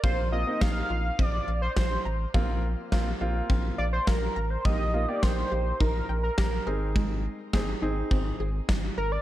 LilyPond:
<<
  \new Staff \with { instrumentName = "Analog synth lead" } { \time 4/4 \key bes \major \tempo 4 = 104 c''8 ees''8 f''4 d''8. c''16 c''8. r16 | r2 r8 d''16 c''16 bes'8. c''16 | ees''8. d''16 c''4 bes'8. bes'16 bes'8. r16 | r2. r8 bes'16 d''16 | }
  \new Staff \with { instrumentName = "Synth arpeggio sound" } { \time 4/4 \key bes \major f8 r8 bes8 f'8 c'8 f''8 f'8 bes''8 | f8 r8 bes8 f'8 c'8 f''8 f'8 bes''8 | g8 r8 bes8 g'8 ees'8 g''8 g'8 bes'8 | aes8 r8 bes8 ees'8 c'8 aes'8 ees'8 bes'8 | }
  \new Staff \with { instrumentName = "Grand piano" } { \time 4/4 \key bes \major <bes c' f'>16 r16 <bes c' f'>16 <bes c' ees'>4 r2 r16 | <bes c' f'>8 r8 <bes c' f'>16 r16 <bes c' f'>4 r4. | <bes ees' g'>16 r16 <bes ees' f'>16 <bes ees' g'>4 r4. r16 <c' ees' aes'>8~ | <c' ees' aes'>8. r16 <c' ees' aes'>16 r16 <c' ees' aes'>4 r4. | }
  \new Staff \with { instrumentName = "Analog synth bass" } { \clef bass \time 4/4 \key bes \major bes,,4 bes,,8 bes,,8 bes,,8 bes,,8 bes,,8 a,,8 | bes,,4 bes,,8 bes,,8 bes,,8 bes,,8 bes,,8 a,,8 | bes,,4 bes,,8 bes,,8 bes,,8 bes,,8 bes,,8 aes,,8~ | aes,,4 aes,,8 aes,,8 aes,,8 aes,,8 aes,,8 aes,,8 | }
  \new DrumStaff \with { instrumentName = "Drums" } \drummode { \time 4/4 bd4 <bd sn>4 bd4 <bd sn>4 | bd4 <bd sn>4 bd4 <bd sn>4 | bd4 <bd sn>4 bd4 <bd sn>4 | bd4 <bd sn>4 bd4 <bd sn>4 | }
>>